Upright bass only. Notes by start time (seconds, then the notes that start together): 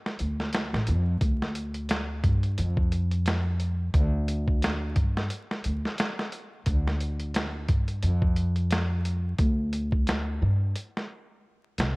0.20 D2
0.73 A1
0.88 F2
1.22 D2
2.24 G2
2.59 F2
3.94 D2
4.96 G2
5.65 D2
6.67 D2
7.69 G2
8.03 F2
9.39 D2
10.42 G2
11.79 C2